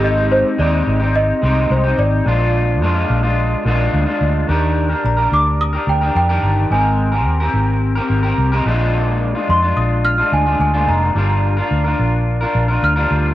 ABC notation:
X:1
M:4/4
L:1/16
Q:1/4=108
K:Eb
V:1 name="Celesta"
e2 c2 d4 e4 c2 d2- | d12 z4 | z4 b2 d'2 e'2 g2 g4 | a6 z8 z2 |
z4 c'2 e'2 f'2 a2 a2 b2- | b6 z6 f'4 |]
V:2 name="Clean electric guitar"
[A,CEG]4 [A,CEG]3 [CEG]3 [A,CEG]3 [CEG]3 | [B,,A,DF]4 [B,,A,DF]3 [A,DF]3 [B,,A,DF]3 [A,DF]3 | [E,DGB]3 [DGB]2 [DGB]4 [DGB]2 [DGB]2 [E,DGB]3 | [A,CB]3 [CGB]2 [CGB]4 [CGB]2 [CGB]2 [A,CGB] [B,,A,DF]2- |
[B,,A,DF]3 [A,DF]2 [A,DF]4 [A,DF]2 [A,DF]2 [B,,A,DF]3 | [G,DFB]3 [DFB]2 [DFB]4 [DFB]2 [DFB]2 [G,DFB]3 |]
V:3 name="Fingered electric bass" clef=bass
A,,,4 E,,2 A,,,4 C,,2 C,,2 A,,,2 | B,,,4 F,,2 B,,,4 B,,,2 D,, z D,,2 | E,,4 B,,,2 D,,4 D,,2 F,,2 G,,,2 | A,,,4 E,,2 A,,,4 A,,,2 C,,2 B,,,2- |
B,,,4 F,,2 B,,,4 D,,2 D,,2 F,,,2 | G,,,4 D,,2 B,,,4 B,,,2 D,,2 D,,2 |]